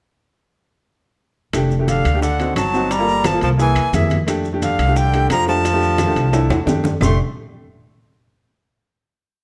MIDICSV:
0, 0, Header, 1, 6, 480
1, 0, Start_track
1, 0, Key_signature, -1, "major"
1, 0, Tempo, 343249
1, 2147, Time_signature, 4, 2, 24, 8
1, 13197, End_track
2, 0, Start_track
2, 0, Title_t, "Flute"
2, 0, Program_c, 0, 73
2, 2635, Note_on_c, 0, 77, 80
2, 3078, Note_off_c, 0, 77, 0
2, 3108, Note_on_c, 0, 78, 92
2, 3554, Note_off_c, 0, 78, 0
2, 3589, Note_on_c, 0, 81, 90
2, 4079, Note_on_c, 0, 82, 96
2, 4100, Note_off_c, 0, 81, 0
2, 4567, Note_on_c, 0, 81, 89
2, 4588, Note_off_c, 0, 82, 0
2, 4785, Note_off_c, 0, 81, 0
2, 4793, Note_on_c, 0, 81, 87
2, 4877, Note_off_c, 0, 81, 0
2, 5038, Note_on_c, 0, 80, 97
2, 5519, Note_on_c, 0, 76, 77
2, 5540, Note_off_c, 0, 80, 0
2, 5872, Note_off_c, 0, 76, 0
2, 6470, Note_on_c, 0, 77, 89
2, 6943, Note_on_c, 0, 79, 98
2, 6963, Note_off_c, 0, 77, 0
2, 7415, Note_off_c, 0, 79, 0
2, 7424, Note_on_c, 0, 82, 103
2, 7645, Note_off_c, 0, 82, 0
2, 7668, Note_on_c, 0, 81, 98
2, 9286, Note_off_c, 0, 81, 0
2, 9823, Note_on_c, 0, 84, 74
2, 10044, Note_off_c, 0, 84, 0
2, 13197, End_track
3, 0, Start_track
3, 0, Title_t, "Grand piano"
3, 0, Program_c, 1, 0
3, 2146, Note_on_c, 1, 57, 77
3, 2159, Note_on_c, 1, 62, 72
3, 2175, Note_on_c, 1, 67, 92
3, 2399, Note_off_c, 1, 57, 0
3, 2405, Note_off_c, 1, 62, 0
3, 2413, Note_off_c, 1, 67, 0
3, 2505, Note_on_c, 1, 57, 70
3, 2516, Note_on_c, 1, 62, 61
3, 2526, Note_on_c, 1, 67, 75
3, 2842, Note_off_c, 1, 57, 0
3, 2848, Note_off_c, 1, 62, 0
3, 2853, Note_off_c, 1, 67, 0
3, 2989, Note_on_c, 1, 57, 68
3, 2999, Note_on_c, 1, 62, 66
3, 3012, Note_on_c, 1, 67, 82
3, 3108, Note_off_c, 1, 57, 0
3, 3113, Note_off_c, 1, 62, 0
3, 3120, Note_off_c, 1, 67, 0
3, 3346, Note_on_c, 1, 60, 62
3, 3355, Note_on_c, 1, 63, 56
3, 3364, Note_on_c, 1, 66, 70
3, 3683, Note_off_c, 1, 60, 0
3, 3687, Note_off_c, 1, 63, 0
3, 3692, Note_off_c, 1, 66, 0
3, 3825, Note_on_c, 1, 60, 71
3, 3836, Note_on_c, 1, 63, 61
3, 3849, Note_on_c, 1, 66, 82
3, 4066, Note_off_c, 1, 60, 0
3, 4072, Note_off_c, 1, 63, 0
3, 4078, Note_off_c, 1, 66, 0
3, 4180, Note_on_c, 1, 58, 80
3, 4186, Note_on_c, 1, 65, 64
3, 4203, Note_on_c, 1, 69, 78
3, 4519, Note_off_c, 1, 58, 0
3, 4523, Note_off_c, 1, 65, 0
3, 4531, Note_off_c, 1, 69, 0
3, 4652, Note_on_c, 1, 58, 62
3, 4660, Note_on_c, 1, 65, 58
3, 4665, Note_on_c, 1, 69, 74
3, 4911, Note_off_c, 1, 58, 0
3, 4915, Note_off_c, 1, 65, 0
3, 4917, Note_off_c, 1, 69, 0
3, 5001, Note_on_c, 1, 58, 68
3, 5013, Note_on_c, 1, 64, 62
3, 5022, Note_on_c, 1, 68, 76
3, 5349, Note_off_c, 1, 58, 0
3, 5355, Note_off_c, 1, 64, 0
3, 5360, Note_off_c, 1, 68, 0
3, 5504, Note_on_c, 1, 58, 64
3, 5511, Note_on_c, 1, 64, 60
3, 5523, Note_on_c, 1, 68, 82
3, 5840, Note_off_c, 1, 58, 0
3, 5843, Note_off_c, 1, 64, 0
3, 5849, Note_off_c, 1, 68, 0
3, 5965, Note_on_c, 1, 57, 86
3, 5981, Note_on_c, 1, 62, 74
3, 5988, Note_on_c, 1, 67, 92
3, 6226, Note_off_c, 1, 57, 0
3, 6234, Note_off_c, 1, 62, 0
3, 6237, Note_off_c, 1, 67, 0
3, 6329, Note_on_c, 1, 57, 70
3, 6340, Note_on_c, 1, 62, 66
3, 6347, Note_on_c, 1, 67, 82
3, 6671, Note_off_c, 1, 57, 0
3, 6677, Note_off_c, 1, 62, 0
3, 6680, Note_off_c, 1, 67, 0
3, 6812, Note_on_c, 1, 57, 73
3, 6821, Note_on_c, 1, 62, 68
3, 6836, Note_on_c, 1, 67, 80
3, 7069, Note_off_c, 1, 57, 0
3, 7073, Note_off_c, 1, 62, 0
3, 7081, Note_off_c, 1, 67, 0
3, 7176, Note_on_c, 1, 57, 66
3, 7186, Note_on_c, 1, 62, 62
3, 7201, Note_on_c, 1, 67, 75
3, 7514, Note_off_c, 1, 57, 0
3, 7519, Note_off_c, 1, 62, 0
3, 7527, Note_off_c, 1, 67, 0
3, 7650, Note_on_c, 1, 57, 71
3, 7654, Note_on_c, 1, 62, 66
3, 7669, Note_on_c, 1, 67, 75
3, 7907, Note_off_c, 1, 57, 0
3, 7909, Note_off_c, 1, 62, 0
3, 7916, Note_off_c, 1, 67, 0
3, 8007, Note_on_c, 1, 57, 81
3, 8024, Note_on_c, 1, 62, 72
3, 8038, Note_on_c, 1, 67, 90
3, 8349, Note_off_c, 1, 57, 0
3, 8357, Note_off_c, 1, 62, 0
3, 8364, Note_off_c, 1, 67, 0
3, 8478, Note_on_c, 1, 57, 77
3, 8496, Note_on_c, 1, 62, 69
3, 8505, Note_on_c, 1, 67, 79
3, 8740, Note_off_c, 1, 57, 0
3, 8749, Note_off_c, 1, 62, 0
3, 8754, Note_off_c, 1, 67, 0
3, 8841, Note_on_c, 1, 57, 84
3, 8850, Note_on_c, 1, 62, 75
3, 8855, Note_on_c, 1, 64, 85
3, 9186, Note_off_c, 1, 57, 0
3, 9190, Note_off_c, 1, 62, 0
3, 9192, Note_off_c, 1, 64, 0
3, 9301, Note_on_c, 1, 57, 80
3, 9316, Note_on_c, 1, 62, 75
3, 9329, Note_on_c, 1, 67, 91
3, 9656, Note_off_c, 1, 57, 0
3, 9663, Note_off_c, 1, 62, 0
3, 9669, Note_off_c, 1, 67, 0
3, 9818, Note_on_c, 1, 62, 65
3, 9821, Note_on_c, 1, 67, 80
3, 9822, Note_on_c, 1, 57, 73
3, 10042, Note_off_c, 1, 62, 0
3, 10043, Note_off_c, 1, 57, 0
3, 10043, Note_off_c, 1, 67, 0
3, 13197, End_track
4, 0, Start_track
4, 0, Title_t, "Tenor saxophone"
4, 0, Program_c, 2, 66
4, 2615, Note_on_c, 2, 50, 61
4, 3068, Note_off_c, 2, 50, 0
4, 3099, Note_on_c, 2, 50, 70
4, 3549, Note_off_c, 2, 50, 0
4, 3571, Note_on_c, 2, 54, 77
4, 4059, Note_on_c, 2, 55, 87
4, 4080, Note_off_c, 2, 54, 0
4, 4549, Note_on_c, 2, 53, 79
4, 4570, Note_off_c, 2, 55, 0
4, 4788, Note_off_c, 2, 53, 0
4, 4800, Note_on_c, 2, 53, 78
4, 4905, Note_off_c, 2, 53, 0
4, 5046, Note_on_c, 2, 52, 75
4, 5516, Note_on_c, 2, 48, 60
4, 5537, Note_off_c, 2, 52, 0
4, 5870, Note_off_c, 2, 48, 0
4, 6473, Note_on_c, 2, 50, 68
4, 6954, Note_off_c, 2, 50, 0
4, 6954, Note_on_c, 2, 50, 79
4, 7418, Note_off_c, 2, 50, 0
4, 7426, Note_on_c, 2, 53, 78
4, 7647, Note_off_c, 2, 53, 0
4, 7667, Note_on_c, 2, 53, 81
4, 9286, Note_off_c, 2, 53, 0
4, 9819, Note_on_c, 2, 57, 65
4, 10042, Note_off_c, 2, 57, 0
4, 13197, End_track
5, 0, Start_track
5, 0, Title_t, "Upright bass"
5, 0, Program_c, 3, 32
5, 2144, Note_on_c, 3, 29, 85
5, 2816, Note_off_c, 3, 29, 0
5, 2866, Note_on_c, 3, 38, 81
5, 3536, Note_off_c, 3, 38, 0
5, 3572, Note_on_c, 3, 31, 78
5, 4699, Note_off_c, 3, 31, 0
5, 4782, Note_on_c, 3, 36, 85
5, 5230, Note_off_c, 3, 36, 0
5, 5255, Note_on_c, 3, 39, 61
5, 5483, Note_off_c, 3, 39, 0
5, 5494, Note_on_c, 3, 41, 74
5, 6617, Note_off_c, 3, 41, 0
5, 6691, Note_on_c, 3, 36, 81
5, 7365, Note_off_c, 3, 36, 0
5, 7412, Note_on_c, 3, 41, 78
5, 8534, Note_off_c, 3, 41, 0
5, 8606, Note_on_c, 3, 36, 87
5, 9058, Note_off_c, 3, 36, 0
5, 9081, Note_on_c, 3, 40, 65
5, 9312, Note_off_c, 3, 40, 0
5, 9322, Note_on_c, 3, 41, 70
5, 9753, Note_off_c, 3, 41, 0
5, 9807, Note_on_c, 3, 29, 87
5, 10035, Note_off_c, 3, 29, 0
5, 13197, End_track
6, 0, Start_track
6, 0, Title_t, "Drums"
6, 2145, Note_on_c, 9, 65, 82
6, 2146, Note_on_c, 9, 60, 60
6, 2148, Note_on_c, 9, 63, 28
6, 2156, Note_on_c, 9, 75, 57
6, 2157, Note_on_c, 9, 70, 69
6, 2285, Note_off_c, 9, 65, 0
6, 2286, Note_off_c, 9, 60, 0
6, 2288, Note_off_c, 9, 63, 0
6, 2296, Note_off_c, 9, 70, 0
6, 2296, Note_off_c, 9, 75, 0
6, 2383, Note_on_c, 9, 63, 31
6, 2388, Note_on_c, 9, 60, 31
6, 2397, Note_on_c, 9, 70, 25
6, 2523, Note_off_c, 9, 63, 0
6, 2528, Note_off_c, 9, 60, 0
6, 2536, Note_off_c, 9, 70, 0
6, 2624, Note_on_c, 9, 63, 55
6, 2628, Note_on_c, 9, 60, 57
6, 2631, Note_on_c, 9, 65, 65
6, 2637, Note_on_c, 9, 70, 71
6, 2764, Note_off_c, 9, 63, 0
6, 2768, Note_off_c, 9, 60, 0
6, 2771, Note_off_c, 9, 65, 0
6, 2777, Note_off_c, 9, 70, 0
6, 2870, Note_on_c, 9, 65, 83
6, 2872, Note_on_c, 9, 60, 33
6, 2873, Note_on_c, 9, 75, 62
6, 2882, Note_on_c, 9, 70, 26
6, 3010, Note_off_c, 9, 65, 0
6, 3012, Note_off_c, 9, 60, 0
6, 3012, Note_off_c, 9, 75, 0
6, 3022, Note_off_c, 9, 70, 0
6, 3103, Note_on_c, 9, 63, 31
6, 3111, Note_on_c, 9, 60, 64
6, 3118, Note_on_c, 9, 70, 66
6, 3243, Note_off_c, 9, 63, 0
6, 3251, Note_off_c, 9, 60, 0
6, 3257, Note_off_c, 9, 70, 0
6, 3338, Note_on_c, 9, 63, 29
6, 3351, Note_on_c, 9, 65, 62
6, 3364, Note_on_c, 9, 70, 24
6, 3478, Note_off_c, 9, 63, 0
6, 3491, Note_off_c, 9, 65, 0
6, 3504, Note_off_c, 9, 70, 0
6, 3578, Note_on_c, 9, 63, 31
6, 3581, Note_on_c, 9, 75, 58
6, 3583, Note_on_c, 9, 65, 90
6, 3591, Note_on_c, 9, 60, 29
6, 3591, Note_on_c, 9, 61, 73
6, 3603, Note_on_c, 9, 70, 64
6, 3718, Note_off_c, 9, 63, 0
6, 3721, Note_off_c, 9, 75, 0
6, 3723, Note_off_c, 9, 65, 0
6, 3731, Note_off_c, 9, 60, 0
6, 3731, Note_off_c, 9, 61, 0
6, 3743, Note_off_c, 9, 70, 0
6, 3828, Note_on_c, 9, 60, 31
6, 3834, Note_on_c, 9, 70, 26
6, 3968, Note_off_c, 9, 60, 0
6, 3974, Note_off_c, 9, 70, 0
6, 4050, Note_on_c, 9, 63, 29
6, 4067, Note_on_c, 9, 60, 64
6, 4069, Note_on_c, 9, 65, 63
6, 4072, Note_on_c, 9, 70, 73
6, 4189, Note_off_c, 9, 63, 0
6, 4207, Note_off_c, 9, 60, 0
6, 4209, Note_off_c, 9, 65, 0
6, 4211, Note_off_c, 9, 70, 0
6, 4293, Note_on_c, 9, 63, 30
6, 4310, Note_on_c, 9, 60, 31
6, 4313, Note_on_c, 9, 70, 26
6, 4433, Note_off_c, 9, 63, 0
6, 4450, Note_off_c, 9, 60, 0
6, 4453, Note_off_c, 9, 70, 0
6, 4535, Note_on_c, 9, 65, 84
6, 4537, Note_on_c, 9, 75, 60
6, 4539, Note_on_c, 9, 63, 84
6, 4546, Note_on_c, 9, 60, 58
6, 4547, Note_on_c, 9, 70, 65
6, 4675, Note_off_c, 9, 65, 0
6, 4677, Note_off_c, 9, 75, 0
6, 4678, Note_off_c, 9, 63, 0
6, 4686, Note_off_c, 9, 60, 0
6, 4687, Note_off_c, 9, 70, 0
6, 4774, Note_on_c, 9, 65, 57
6, 4778, Note_on_c, 9, 63, 31
6, 4786, Note_on_c, 9, 70, 27
6, 4789, Note_on_c, 9, 60, 32
6, 4914, Note_off_c, 9, 65, 0
6, 4918, Note_off_c, 9, 63, 0
6, 4926, Note_off_c, 9, 70, 0
6, 4929, Note_off_c, 9, 60, 0
6, 5024, Note_on_c, 9, 63, 34
6, 5027, Note_on_c, 9, 60, 60
6, 5028, Note_on_c, 9, 70, 63
6, 5164, Note_off_c, 9, 63, 0
6, 5167, Note_off_c, 9, 60, 0
6, 5168, Note_off_c, 9, 70, 0
6, 5250, Note_on_c, 9, 75, 67
6, 5258, Note_on_c, 9, 65, 87
6, 5261, Note_on_c, 9, 63, 31
6, 5267, Note_on_c, 9, 70, 26
6, 5389, Note_off_c, 9, 75, 0
6, 5397, Note_off_c, 9, 65, 0
6, 5401, Note_off_c, 9, 63, 0
6, 5407, Note_off_c, 9, 70, 0
6, 5497, Note_on_c, 9, 63, 77
6, 5501, Note_on_c, 9, 70, 63
6, 5503, Note_on_c, 9, 65, 62
6, 5511, Note_on_c, 9, 60, 30
6, 5511, Note_on_c, 9, 61, 73
6, 5637, Note_off_c, 9, 63, 0
6, 5641, Note_off_c, 9, 70, 0
6, 5643, Note_off_c, 9, 65, 0
6, 5650, Note_off_c, 9, 60, 0
6, 5650, Note_off_c, 9, 61, 0
6, 5734, Note_on_c, 9, 63, 77
6, 5745, Note_on_c, 9, 60, 29
6, 5745, Note_on_c, 9, 70, 26
6, 5749, Note_on_c, 9, 65, 61
6, 5874, Note_off_c, 9, 63, 0
6, 5885, Note_off_c, 9, 60, 0
6, 5885, Note_off_c, 9, 70, 0
6, 5889, Note_off_c, 9, 65, 0
6, 5977, Note_on_c, 9, 63, 29
6, 5980, Note_on_c, 9, 75, 58
6, 5982, Note_on_c, 9, 65, 89
6, 5984, Note_on_c, 9, 70, 72
6, 5987, Note_on_c, 9, 60, 65
6, 6117, Note_off_c, 9, 63, 0
6, 6119, Note_off_c, 9, 75, 0
6, 6122, Note_off_c, 9, 65, 0
6, 6124, Note_off_c, 9, 70, 0
6, 6127, Note_off_c, 9, 60, 0
6, 6213, Note_on_c, 9, 63, 32
6, 6221, Note_on_c, 9, 70, 27
6, 6231, Note_on_c, 9, 60, 31
6, 6353, Note_off_c, 9, 63, 0
6, 6361, Note_off_c, 9, 70, 0
6, 6371, Note_off_c, 9, 60, 0
6, 6460, Note_on_c, 9, 63, 52
6, 6465, Note_on_c, 9, 70, 68
6, 6467, Note_on_c, 9, 65, 61
6, 6470, Note_on_c, 9, 60, 54
6, 6600, Note_off_c, 9, 63, 0
6, 6605, Note_off_c, 9, 70, 0
6, 6607, Note_off_c, 9, 65, 0
6, 6610, Note_off_c, 9, 60, 0
6, 6700, Note_on_c, 9, 65, 84
6, 6702, Note_on_c, 9, 60, 34
6, 6702, Note_on_c, 9, 75, 61
6, 6710, Note_on_c, 9, 70, 27
6, 6840, Note_off_c, 9, 65, 0
6, 6842, Note_off_c, 9, 60, 0
6, 6842, Note_off_c, 9, 75, 0
6, 6849, Note_off_c, 9, 70, 0
6, 6940, Note_on_c, 9, 70, 65
6, 6943, Note_on_c, 9, 60, 62
6, 6945, Note_on_c, 9, 63, 33
6, 7080, Note_off_c, 9, 70, 0
6, 7083, Note_off_c, 9, 60, 0
6, 7085, Note_off_c, 9, 63, 0
6, 7181, Note_on_c, 9, 63, 32
6, 7182, Note_on_c, 9, 65, 67
6, 7182, Note_on_c, 9, 70, 26
6, 7320, Note_off_c, 9, 63, 0
6, 7322, Note_off_c, 9, 65, 0
6, 7322, Note_off_c, 9, 70, 0
6, 7412, Note_on_c, 9, 65, 91
6, 7412, Note_on_c, 9, 66, 67
6, 7416, Note_on_c, 9, 75, 60
6, 7417, Note_on_c, 9, 60, 30
6, 7417, Note_on_c, 9, 61, 69
6, 7417, Note_on_c, 9, 63, 34
6, 7431, Note_on_c, 9, 70, 66
6, 7552, Note_off_c, 9, 65, 0
6, 7552, Note_off_c, 9, 66, 0
6, 7556, Note_off_c, 9, 75, 0
6, 7557, Note_off_c, 9, 60, 0
6, 7557, Note_off_c, 9, 61, 0
6, 7557, Note_off_c, 9, 63, 0
6, 7571, Note_off_c, 9, 70, 0
6, 7662, Note_on_c, 9, 60, 31
6, 7668, Note_on_c, 9, 70, 27
6, 7802, Note_off_c, 9, 60, 0
6, 7808, Note_off_c, 9, 70, 0
6, 7900, Note_on_c, 9, 63, 32
6, 7901, Note_on_c, 9, 60, 64
6, 7902, Note_on_c, 9, 65, 68
6, 7905, Note_on_c, 9, 70, 70
6, 8040, Note_off_c, 9, 63, 0
6, 8041, Note_off_c, 9, 60, 0
6, 8042, Note_off_c, 9, 65, 0
6, 8045, Note_off_c, 9, 70, 0
6, 8139, Note_on_c, 9, 60, 32
6, 8140, Note_on_c, 9, 63, 33
6, 8146, Note_on_c, 9, 70, 28
6, 8279, Note_off_c, 9, 60, 0
6, 8280, Note_off_c, 9, 63, 0
6, 8286, Note_off_c, 9, 70, 0
6, 8366, Note_on_c, 9, 63, 84
6, 8368, Note_on_c, 9, 65, 80
6, 8376, Note_on_c, 9, 60, 55
6, 8378, Note_on_c, 9, 75, 64
6, 8381, Note_on_c, 9, 70, 65
6, 8505, Note_off_c, 9, 63, 0
6, 8508, Note_off_c, 9, 65, 0
6, 8516, Note_off_c, 9, 60, 0
6, 8518, Note_off_c, 9, 75, 0
6, 8521, Note_off_c, 9, 70, 0
6, 8617, Note_on_c, 9, 63, 30
6, 8620, Note_on_c, 9, 65, 62
6, 8621, Note_on_c, 9, 60, 32
6, 8627, Note_on_c, 9, 70, 28
6, 8756, Note_off_c, 9, 63, 0
6, 8760, Note_off_c, 9, 65, 0
6, 8761, Note_off_c, 9, 60, 0
6, 8767, Note_off_c, 9, 70, 0
6, 8848, Note_on_c, 9, 63, 33
6, 8854, Note_on_c, 9, 65, 70
6, 8857, Note_on_c, 9, 70, 68
6, 8863, Note_on_c, 9, 60, 66
6, 8988, Note_off_c, 9, 63, 0
6, 8994, Note_off_c, 9, 65, 0
6, 8997, Note_off_c, 9, 70, 0
6, 9003, Note_off_c, 9, 60, 0
6, 9089, Note_on_c, 9, 63, 31
6, 9094, Note_on_c, 9, 60, 91
6, 9095, Note_on_c, 9, 65, 77
6, 9096, Note_on_c, 9, 75, 66
6, 9109, Note_on_c, 9, 70, 26
6, 9229, Note_off_c, 9, 63, 0
6, 9234, Note_off_c, 9, 60, 0
6, 9235, Note_off_c, 9, 65, 0
6, 9236, Note_off_c, 9, 75, 0
6, 9249, Note_off_c, 9, 70, 0
6, 9326, Note_on_c, 9, 66, 73
6, 9327, Note_on_c, 9, 63, 76
6, 9334, Note_on_c, 9, 61, 81
6, 9347, Note_on_c, 9, 70, 65
6, 9466, Note_off_c, 9, 66, 0
6, 9467, Note_off_c, 9, 63, 0
6, 9474, Note_off_c, 9, 61, 0
6, 9487, Note_off_c, 9, 70, 0
6, 9563, Note_on_c, 9, 63, 73
6, 9563, Note_on_c, 9, 66, 72
6, 9578, Note_on_c, 9, 61, 84
6, 9591, Note_on_c, 9, 70, 29
6, 9702, Note_off_c, 9, 63, 0
6, 9703, Note_off_c, 9, 66, 0
6, 9717, Note_off_c, 9, 61, 0
6, 9731, Note_off_c, 9, 70, 0
6, 9799, Note_on_c, 9, 64, 87
6, 9801, Note_on_c, 9, 66, 90
6, 9806, Note_on_c, 9, 75, 89
6, 9820, Note_on_c, 9, 61, 91
6, 9831, Note_on_c, 9, 70, 98
6, 9938, Note_off_c, 9, 64, 0
6, 9941, Note_off_c, 9, 66, 0
6, 9946, Note_off_c, 9, 75, 0
6, 9960, Note_off_c, 9, 61, 0
6, 9971, Note_off_c, 9, 70, 0
6, 13197, End_track
0, 0, End_of_file